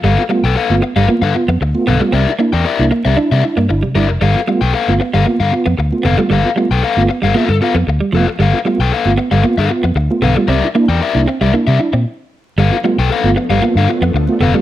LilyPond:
<<
  \new Staff \with { instrumentName = "Overdriven electric guitar" } { \time 4/4 \key g \mixolydian \tempo 4 = 115 <a' b' f''>16 r8 <a' b' g''>16 <a' b' f''>16 r8 <a' b' f''>16 r16 <a' b' f''>16 r4 <a' b' f''>16 r16 | <bes' d'' e''>16 r8 <bes' d'' g''>16 <bes' d'' e''>16 r8 <bes' d'' e''>16 r16 <bes' d'' e''>16 r4 <bes' d'' e''>16 r16 | <a' b' f''>16 r8 <a' b' g''>16 <a' b' f''>16 r8 <a' b' f''>16 r16 <a' b' f''>16 r4 <a' b' f''>16 r16 | <a' b' f''>16 r8 <a' b' g''>16 <a' b' f''>16 r8 <a' b' f''>16 <a' b' f''>8 <a' b' f''>16 r8. <a' b' f''>16 r16 |
<a' b' f''>16 r8 <a' b' g''>16 <a' b' f''>16 r8 <a' b' f''>16 r16 <a' b' f''>8 r8. <a' b' f''>16 r16 | <bes' d'' e''>16 r8 <bes' d'' g''>16 <bes' d'' e''>16 r8 <bes' d'' e''>16 r16 <bes' d'' e''>16 r4. | <a' b' f''>16 r8 <a' b' g''>16 <a' b' f''>16 r8 <a' b' f''>16 r16 <a' b' f''>16 r4 <a' b' f''>16 r16 | }
  \new Staff \with { instrumentName = "Tonewheel organ" } { \time 4/4 \key g \mixolydian <g, d>16 <b f'>16 <a b f'>16 r8 <a b f'>16 r16 <g, d>16 <b f'>16 <g, d>16 <b f'>16 r8 <a b f'>16 <g, d>16 <a b f'>16 | <c g>16 <d' e'>16 <bes d' e'>16 r8 <bes d' e'>16 r16 <c g>16 <d' e'>16 <c g>16 <d' e'>16 r16 <d' e'>16 <c g>16 <d' e'>16 r16 | <g, d>16 <b f'>16 <a b f'>16 r8 <a b f'>16 r16 <g, d>16 <b f'>16 <g, d>16 <b f'>16 r8 <a b f'>16 <g, d>16 <a b f'>16 | <g, d>16 <b f'>16 <a b f'>16 r8 <a b f'>16 r16 <g, d>16 <b f'>16 <g, d>16 <b f'>16 r8. <a b f'>16 r16 |
<g, d>16 <b f'>16 <a b f'>16 r8 <a b f'>16 r16 <g, d>16 <b f'>16 <g, d>16 <b f'>16 r8 <a b f'>16 <g, d>16 <a b f'>16 | <c g>16 <d' e'>16 <bes d' e'>16 r8 <bes d' e'>16 r16 <c g>16 <d' e'>16 <c g>16 <d' e'>16 r4 r16 | <g, d>16 <b f'>16 <a b f'>16 r8 <a b f'>16 r16 <g, d>16 <b f'>16 <g, d>16 <b f'>16 r8 <a b f'>16 <g, d>16 <a b f'>16 | }
  \new Staff \with { instrumentName = "Clean electric guitar" } { \time 4/4 \key g \mixolydian g16 r16 g16 r8. b16 g16 bes16 r8 b16 r8 b16 g16 | c'16 r16 bes16 r8. bes16 c'16 d'16 r8 bes16 r16 g16 g16 r16 | g16 r16 g16 r8. b16 g16 bes16 r8 b16 r8 b16 g16 | g16 r16 g16 r8. b16 g16 bes16 r8 b16 r16 g16 f16 r16 |
g16 r16 g16 r8. b16 g16 bes16 r8 b16 r8 b16 g16 | c'16 r16 bes16 r8. c'16 g16 bes16 r8 c'16 r4 | g16 r16 g16 r8. b16 g16 bes16 r8 b16 r8 b16 g16 | }
  \new Staff \with { instrumentName = "String machine" } { \time 4/4 \key g \mixolydian r1 | r1 | r1 | r1 |
r1 | r1 | <f a b d'>1 | }
  \new Staff \with { instrumentName = "Fingered electric bass" } { \clef bass \time 4/4 \key g \mixolydian g,,16 r8 b,,16 r16 g,,16 r16 g,,16 r16 g,16 r16 f,16 d,16 r16 b,,16 r16 | c,16 r8 e,16 r16 c,16 r16 c,16 r16 c16 r16 g,16 g,,16 r16 g,,16 f,,16 | g,,16 r8 b,,16 r16 g,,16 r16 g,,16 r16 g,16 r16 f,16 d,16 r16 f,,16 r16 | g,,16 r8 b,,16 r16 g,,16 r16 g,,16 r16 g,16 r16 f,16 d,16 r16 f,,16 r16 |
g,,16 r8 b,,16 r16 g,,16 r16 g,,16 r16 g,16 r16 f,16 d,16 r16 b,,16 r16 | c,16 r8 e,16 r16 c,16 r16 c,16 r16 c16 r16 bes,16 r4 | g,,16 r8 b,,16 r16 g,,16 r16 g,,16 r16 g,16 r16 f,16 d,16 r16 f,,16 r16 | }
>>